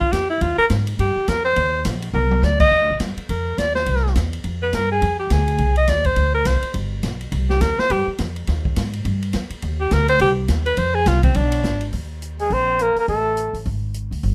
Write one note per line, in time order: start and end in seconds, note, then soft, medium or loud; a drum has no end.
0.00 0.14 F4 medium
0.00 muted upright bass stroke soft
0.00 kick medium
0.12 0.40 F2 medium
0.12 0.29 G4 loud
0.12 kick soft
0.12 snare medium
0.12 hi-hat pedal medium
0.12 ride medium
0.30 0.44 E4 medium
0.41 0.57 D#2 medium
0.41 0.57 F4 medium
0.41 kick soft
0.41 ride medium
0.58 0.65 A#4 loud
0.58 muted upright bass stroke soft
0.70 0.98 G#2 loud
0.70 kick soft
0.70 snare medium
0.70 hi-hat pedal medium
0.70 ride medium
0.87 ride medium
0.99 1.15 G2 medium
0.99 1.30 G4 medium
0.99 kick soft
0.99 ride medium
1.16 muted upright bass stroke soft
1.28 1.56 F2 medium
1.28 1.44 A#4 medium
1.28 kick soft
1.28 snare medium
1.28 hi-hat pedal medium
1.28 ride medium
1.45 1.82 C5 loud
1.56 1.84 D#2 loud
1.56 kick soft
1.56 ride medium
1.85 2.13 A#1 loud
1.85 kick soft
1.85 snare medium
1.85 hi-hat pedal medium
1.85 ride medium
2.02 ride medium
2.13 2.41 C2 medium
2.13 2.46 A#4 medium
2.13 mid tom medium
2.31 mid tom medium
2.42 2.70 D2 medium
2.42 2.60 D5 medium
2.42 snare medium
2.42 hi-hat pedal medium
2.60 2.98 D#5 loud
2.60 kick medium
2.60 crash medium
2.71 2.81 D#2 medium
2.81 2.90 D2 medium
2.90 2.99 A#1 medium
3.00 3.16 G2 medium
3.00 kick soft
3.00 snare medium
3.00 hi-hat pedal medium
3.00 ride medium
3.17 muted upright bass stroke soft
3.17 ride medium
3.29 3.57 F2 medium
3.29 3.60 A#4 medium
3.29 kick soft
3.29 ride medium
3.58 3.86 D#2 medium
3.58 3.75 D5 medium
3.58 kick soft
3.58 snare medium
3.58 hi-hat pedal medium
3.58 ride medium
3.75 4.13 C5 medium
3.75 snare medium
3.86 4.15 C2 medium
3.86 kick soft
3.86 ride medium
3.96 snare soft
4.06 snare soft
4.15 4.44 E2 loud
4.15 kick soft
4.15 snare medium
4.15 hi-hat pedal medium
4.15 ride medium
4.33 ride medium
4.44 4.72 F2 medium
4.44 kick soft
4.44 ride medium
4.62 4.76 B4 medium
4.73 5.01 G2 medium
4.73 4.91 A#4 medium
4.73 kick soft
4.73 snare medium
4.73 hi-hat pedal soft
4.73 ride medium
4.92 5.18 G#4 loud
5.02 5.30 F2 medium
5.02 kick soft
5.02 ride medium
5.19 5.34 G4 medium
5.30 5.59 D2 loud
5.30 5.77 G#4 medium
5.30 kick soft
5.30 snare medium
5.30 hi-hat pedal medium
5.30 ride medium
5.48 ride medium
5.58 5.87 C2 medium
5.58 kick soft
5.58 ride medium
5.76 5.91 D#5 loud
5.76 ride soft
5.87 6.16 D#2 medium
5.87 6.08 D5 medium
5.87 kick soft
5.87 snare medium
5.87 hi-hat pedal medium
5.87 ride medium
6.04 6.34 C5 loud
6.04 kick medium
6.04 ride medium
6.16 6.45 D2 medium
6.16 kick soft
6.16 ride medium
6.34 6.48 A#4 medium
6.45 6.61 C2 medium
6.45 6.75 C5 medium
6.45 kick soft
6.45 snare medium
6.45 hi-hat pedal medium
6.45 ride medium
6.62 muted upright bass stroke soft
6.62 ride medium
6.74 7.02 G1 medium
6.74 kick soft
6.74 ride medium
7.03 7.31 B1 medium
7.03 kick soft
7.03 snare medium
7.03 hi-hat pedal medium
7.03 ride medium
7.21 ride soft
7.32 7.60 C2 medium
7.32 kick soft
7.32 ride medium
7.50 7.63 G4 medium
7.50 snare medium
7.61 7.77 D#2 loud
7.61 7.81 A#4 medium
7.61 kick soft
7.61 snare medium
7.61 hi-hat pedal medium
7.61 ride medium
7.78 7.93 C5 loud
7.78 muted upright bass stroke soft
7.78 snare medium
7.90 8.06 G2 loud
7.90 8.08 G4 medium
7.90 kick soft
7.90 ride medium
8.07 muted upright bass stroke soft
8.18 8.47 F2 medium
8.18 kick soft
8.18 snare medium
8.18 hi-hat pedal medium
8.18 ride medium
8.36 ride soft
8.47 8.76 D#2 medium
8.47 kick soft
8.47 snare soft
8.47 ride medium
8.65 kick medium
8.76 9.04 G#2 medium
8.76 kick soft
8.76 snare medium
8.76 hi-hat pedal medium
8.76 ride medium
8.93 ride medium
9.05 9.33 G2 medium
9.05 kick soft
9.05 ride medium
9.22 ride medium
9.33 9.49 F2 medium
9.33 kick soft
9.33 snare medium
9.33 hi-hat pedal medium
9.33 ride medium
9.50 muted upright bass stroke soft
9.50 ride medium
9.62 9.91 D#2 medium
9.62 kick soft
9.62 ride medium
9.80 9.94 G4 medium
9.91 10.19 D2 loud
9.91 10.09 A#4 medium
9.91 kick soft
9.91 snare medium
9.91 hi-hat pedal medium
9.91 ride medium
10.08 10.20 C5 loud
10.08 ride medium
10.19 10.48 C2 medium
10.19 10.32 G4 loud
10.19 kick soft
10.19 ride medium
10.48 10.77 D#2 medium
10.48 kick soft
10.48 snare medium
10.48 hi-hat pedal medium
10.48 ride medium
10.66 10.80 B4 medium
10.66 ride medium
10.77 11.05 F2 medium
10.77 10.96 C5 medium
10.77 kick soft
10.77 ride medium
10.95 11.09 G#4 loud
11.06 11.34 C2 loud
11.06 11.23 F4 medium
11.06 kick soft
11.06 snare medium
11.06 hi-hat pedal medium
11.06 ride medium
11.23 11.37 C4 medium
11.23 kick medium
11.23 ride medium
11.34 11.63 B1 loud
11.34 11.87 D4 medium
11.34 ride medium
11.52 ride medium
11.63 11.92 G#1 medium
11.63 kick soft
11.63 snare medium
11.63 hi-hat pedal medium
11.81 ride medium
11.93 12.48 D#2 medium
11.93 kick soft
11.93 open hi-hat soft
12.22 closed hi-hat medium
12.39 12.52 G#3 medium
12.39 12.55 G#4 medium
12.39 open hi-hat soft
12.50 12.93 A#1 medium
12.50 12.81 C4 medium
12.50 12.84 C5 loud
12.50 kick soft
12.50 open hi-hat soft
12.79 12.97 A#3 medium
12.79 12.98 A#4 medium
12.79 closed hi-hat soft
12.96 13.08 A#3 medium
12.96 13.08 A#4 medium
12.96 muted upright bass stroke soft
12.96 open hi-hat soft
13.08 13.51 A1 medium
13.08 13.62 A3 medium
13.08 13.62 A4 medium
13.08 kick soft
13.08 open hi-hat soft
13.37 closed hi-hat soft
13.53 13.64 A1 medium
13.53 open hi-hat soft
13.65 14.09 G#1 medium
13.65 kick soft
13.65 open hi-hat soft
13.94 closed hi-hat soft
14.11 14.22 D2 medium
14.11 open hi-hat soft
14.23 14.35 G1 medium
14.23 kick soft
14.23 open hi-hat soft